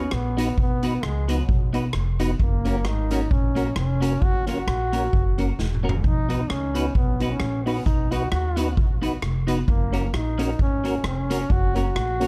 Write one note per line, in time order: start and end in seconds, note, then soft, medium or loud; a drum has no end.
0.00 0.15 C#4 medium
0.11 0.51 A#1 medium
0.11 0.58 B3 medium
0.11 cross-stick loud
0.37 0.49 B3 medium
0.37 0.48 D#4 medium
0.37 0.50 D#4 medium
0.37 0.49 F#4 medium
0.37 0.50 F#4 medium
0.37 0.49 B4 medium
0.37 0.50 B4 medium
0.37 closed hi-hat loud
0.57 0.96 B1 medium
0.57 1.06 B3 loud
0.57 kick loud
0.83 0.95 B3 medium
0.83 0.94 D#4 medium
0.83 0.95 D#4 medium
0.83 0.94 F#4 medium
0.83 0.96 F#4 medium
0.83 0.95 B4 medium
0.83 0.96 B4 medium
0.83 closed hi-hat medium
1.03 1.42 C#2 medium
1.03 1.30 G#3 medium
1.03 cross-stick loud
1.28 1.73 F#3 medium
1.28 1.41 B3 medium
1.28 1.40 D#4 medium
1.28 1.41 D#4 medium
1.28 1.40 F#4 medium
1.28 1.41 F#4 medium
1.28 1.40 B4 medium
1.28 1.41 B4 medium
1.28 closed hi-hat medium
1.49 1.87 B1 medium
1.49 kick loud
1.73 1.86 B3 medium
1.73 1.85 D#4 medium
1.73 1.86 D#4 medium
1.73 1.85 F#4 medium
1.73 1.86 F#4 medium
1.73 1.86 B4 medium
1.73 closed hi-hat medium
1.93 2.33 F1 medium
1.93 cross-stick loud
2.20 2.32 B3 medium
2.20 2.31 D#4 medium
2.20 2.32 D#4 medium
2.20 2.31 F#4 medium
2.20 2.32 F#4 medium
2.20 2.31 B4 medium
2.20 2.33 B4 medium
2.20 closed hi-hat medium
2.39 2.85 F#1 loud
2.39 2.89 A#3 medium
2.39 kick loud
2.65 2.77 A#3 medium
2.65 2.76 C#4 medium
2.65 2.78 C#4 medium
2.65 2.77 F#4 medium
2.65 2.78 F#4 medium
2.65 2.77 A#4 medium
2.65 2.78 A#4 medium
2.65 closed hi-hat medium
2.85 3.24 G#1 medium
2.85 3.32 D#4 loud
2.85 cross-stick loud
3.10 3.23 A#3 medium
3.10 3.22 C#4 medium
3.10 3.23 C#4 medium
3.10 3.22 F#4 medium
3.10 3.24 F#4 medium
3.10 3.22 A#4 medium
3.10 3.24 A#4 loud
3.10 closed hi-hat medium
3.30 3.70 A#1 medium
3.30 3.76 C#4 medium
3.30 muted clean electric guitar stroke soft
3.30 kick loud
3.55 3.68 A#3 medium
3.55 3.67 C#4 medium
3.55 3.68 C#4 medium
3.55 3.68 F#4 medium
3.55 3.69 F#4 medium
3.55 3.68 A#4 medium
3.55 3.69 A#4 medium
3.55 closed hi-hat medium
3.76 4.15 F1 medium
3.76 4.24 C#4 medium
3.76 cross-stick loud
4.01 4.13 A#3 medium
4.01 4.13 C#4 medium
4.01 4.14 C#4 medium
4.01 4.13 F#4 medium
4.01 4.14 F#4 medium
4.01 4.13 A#4 loud
4.01 4.14 A#4 medium
4.01 closed hi-hat medium
4.22 4.61 F#1 medium
4.22 4.48 F#4 loud
4.22 kick loud
4.46 4.59 A#3 medium
4.46 4.58 C#4 medium
4.46 4.60 C#4 medium
4.46 4.59 F#4 medium
4.46 4.60 F#4 medium
4.46 5.81 F#4 loud
4.46 4.59 A#4 medium
4.46 4.60 A#4 medium
4.46 closed hi-hat medium
4.67 5.06 A#1 medium
4.67 cross-stick loud
4.92 5.05 A#3 medium
4.92 5.04 C#4 medium
4.92 5.05 C#4 medium
4.92 5.04 F#4 medium
4.92 5.05 F#4 medium
4.92 5.05 A#4 medium
4.92 5.06 A#4 medium
4.92 closed hi-hat medium
5.13 5.52 F#1 medium
5.13 kick loud
5.38 5.50 A#3 medium
5.38 5.49 C#4 medium
5.38 5.51 C#4 medium
5.38 5.50 F#4 medium
5.38 5.51 F#4 medium
5.38 5.50 A#4 medium
5.38 5.51 A#4 medium
5.38 closed hi-hat medium
5.59 5.97 E1 medium
5.59 snare soft
5.74 mid tom medium
5.83 5.96 A#3 medium
5.83 5.95 C#4 medium
5.83 5.96 C#4 medium
5.83 5.95 F#4 medium
5.83 5.96 F#4 medium
5.83 5.95 A#4 medium
5.83 5.96 A#4 medium
5.89 floor tom loud
6.04 6.43 B1 loud
6.04 6.51 D#4 loud
6.04 kick loud
6.29 6.41 B3 medium
6.29 6.40 D#4 medium
6.29 6.42 D#4 medium
6.29 6.41 F#4 medium
6.29 6.42 F#4 medium
6.29 6.41 B4 medium
6.29 6.42 B4 medium
6.29 closed hi-hat medium
6.50 6.88 C#2 medium
6.50 6.95 C#4 medium
6.50 cross-stick loud
6.75 6.87 B3 medium
6.75 6.86 D#4 medium
6.75 6.87 D#4 medium
6.75 6.86 F#4 medium
6.75 6.88 F#4 medium
6.75 6.87 B4 loud
6.75 6.88 B4 medium
6.75 closed hi-hat medium
6.95 7.34 B1 medium
6.95 7.33 B3 medium
6.95 kick loud
7.20 7.33 B3 medium
7.20 7.31 D#4 medium
7.20 7.33 D#4 medium
7.20 7.32 F#4 medium
7.20 7.33 F#4 medium
7.20 7.32 B4 medium
7.20 7.33 B4 medium
7.20 closed hi-hat medium
7.31 7.67 C#4 medium
7.40 7.79 A#1 medium
7.40 cross-stick loud
7.66 7.85 B3 medium
7.66 7.78 B3 medium
7.66 7.77 D#4 medium
7.66 7.78 D#4 medium
7.66 7.77 F#4 medium
7.66 7.79 F#4 medium
7.66 7.78 B4 medium
7.66 7.79 B4 medium
7.66 open hi-hat medium
7.86 8.25 B1 loud
7.86 8.14 D#4 loud
7.86 kick loud
7.86 hi-hat pedal medium
8.11 8.23 B3 medium
8.11 8.22 D#4 medium
8.11 8.24 D#4 medium
8.11 8.23 F#4 medium
8.11 8.31 F#4 loud
8.11 8.24 F#4 medium
8.11 8.23 B4 loud
8.11 8.24 B4 medium
8.11 closed hi-hat medium
8.32 8.77 D#2 medium
8.32 8.74 F#4 loud
8.32 cross-stick loud
8.56 8.69 B3 medium
8.56 8.68 D#4 medium
8.56 8.69 D#4 medium
8.56 8.68 F#4 medium
8.56 8.69 F#4 medium
8.56 8.68 B4 medium
8.56 8.70 B4 medium
8.56 closed hi-hat medium
8.77 9.16 B1 medium
8.77 kick loud
9.02 9.14 B3 medium
9.02 9.13 D#4 medium
9.02 9.14 D#4 medium
9.02 9.14 F#4 medium
9.02 9.15 F#4 medium
9.02 9.14 B4 medium
9.02 9.15 B4 medium
9.02 closed hi-hat medium
9.22 9.61 F1 medium
9.22 cross-stick loud
9.47 9.59 B3 medium
9.47 9.59 D#4 medium
9.47 9.60 D#4 medium
9.47 9.59 F#4 medium
9.47 9.60 F#4 medium
9.47 9.59 B4 loud
9.47 9.60 B4 medium
9.47 closed hi-hat loud
9.68 10.07 F#1 loud
9.68 10.11 A#3 medium
9.68 kick loud
9.92 10.05 A#3 medium
9.92 10.04 C#4 medium
9.92 10.05 C#4 medium
9.92 10.04 F#4 medium
9.92 10.05 F#4 medium
9.92 10.05 A#4 medium
9.92 10.06 A#4 medium
9.92 closed hi-hat medium
10.13 10.52 A#1 medium
10.13 10.57 D#4 medium
10.13 cross-stick loud
10.38 10.50 A#3 medium
10.38 10.50 C#4 medium
10.38 10.51 C#4 medium
10.38 10.50 F#4 medium
10.38 10.51 F#4 loud
10.38 10.50 A#4 medium
10.38 10.51 A#4 loud
10.38 closed hi-hat medium
10.59 10.98 G#1 medium
10.59 11.03 C#4 loud
10.59 kick loud
10.84 10.96 A#3 medium
10.84 10.95 C#4 medium
10.84 10.96 C#4 medium
10.84 10.95 F#4 medium
10.84 10.97 F#4 medium
10.84 10.96 A#4 medium
10.84 10.97 A#4 medium
10.84 closed hi-hat medium
11.04 11.42 F1 medium
11.04 11.53 C#4 loud
11.04 cross-stick loud
11.29 11.42 A#3 medium
11.29 11.41 C#4 medium
11.29 11.42 C#4 medium
11.29 11.41 F#4 medium
11.29 11.42 F#4 medium
11.29 11.41 A#4 medium
11.29 11.43 A#4 loud
11.29 closed hi-hat loud
11.50 11.88 F#1 loud
11.50 11.76 F#4 loud
11.50 kick loud
11.74 11.87 A#3 medium
11.74 11.86 C#4 medium
11.74 11.87 C#4 medium
11.74 11.86 F#4 medium
11.74 11.88 F#4 medium
11.74 12.27 F#4 loud
11.74 11.86 A#4 loud
11.74 11.88 A#4 medium
11.74 closed hi-hat medium
11.95 12.27 A#1 medium
11.95 cross-stick loud
12.20 12.27 A#3 medium
12.20 12.27 C#4 medium
12.20 12.27 F#4 medium
12.20 12.27 A#4 loud
12.20 12.27 A#4 medium
12.20 closed hi-hat medium